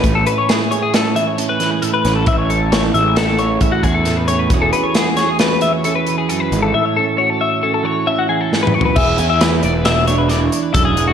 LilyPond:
<<
  \new Staff \with { instrumentName = "Clean electric guitar" } { \time 5/4 \key a \major \tempo 4 = 134 r16 a'16 b'16 cis''16 gis'8 cis''16 gis'16 a'8 e''16 cis''16 a'16 b'8 gis'16 a'16 b'8 a'16 | e''16 cis''16 a'8 cis''16 a'16 e''8 a'16 a'16 cis''8 e''16 fis'16 gis'16 a'8 b'16 cis''16 b'16 | r16 a'16 b'16 cis''16 gis'8 cis''16 gis'16 b'8 e''16 cis''16 a'16 b'8 gis'16 a'16 b'8 a'16 | e''16 cis''16 a'8 cis''16 a'16 e''8 a'16 a'16 cis''8 e''16 fis'16 gis'16 a'8 b'16 cis''16 b'16 |
e''8 gis''16 e''16 b'8 d''16 b'16 e''8 cis''16 b'16 d''16 cis''8 b'16 a'16 gis'8 fis'16 | }
  \new Staff \with { instrumentName = "Clean electric guitar" } { \time 5/4 \key a \major << { r8 cis'8 e'8 gis'8 cis'4 cis'4. cis'8 | r8 cis'8 e'8 gis'8 cis'4 cis'4. cis'8 | <e cis' fis' gis'>8 cis'8 fis'8 gis'8 cis'4 cis'2 | r8 cis'8 fis'8 cis''8 cis'4 cis'2 |
gis'8 cis'16 e'8. e'4 d'4 d'4. | } \\ { <a, e>2~ <a, e>8 e4 e8 a,4 | a,2~ a,8 e4 e8 a,4 | e,2~ e,8 e4 e8 fis,8 gis,8 | a,2~ a,8 e4 e8 gis,8 fis,8 |
e,4 e4 b,4 e4 fis,8 gis,8 | } >> }
  \new Staff \with { instrumentName = "Picked electric bass" } { \clef bass \time 5/4 \key a \major a,,8 r1 a,,8 | a,,4. a,,4. a,,8 e,4. | e,,8 r1 gis,,8 | r1 r4 |
e,,8 e,4 e,,2 r8 e,,4 | }
  \new DrumStaff \with { instrumentName = "Drums" } \drummode { \time 5/4 <hh bd>8 hh8 <hh sn>8 hh8 <hh sn>8 hh8 hh8 <hh sn>8 hh8 <hh sn>8 | <hh bd>8 hh8 <hh sn>8 hh8 <hh sn>8 hh8 <hh bd>8 <hh bd>8 <hh sn>8 hh8 | <hh bd>8 hh8 <hh sn>8 <hh sn>8 <hh sn>8 hh8 hh8 hh8 hh8 hh8 | r4 r4 r4 r4 \tuplet 3/2 { sn8 toml8 tomfh8 } |
<cymc bd>8 hh8 <hh sn>8 hh8 <hh sn>8 hh8 <hh sn>8 hh8 <hh bd>8 hh8 | }
>>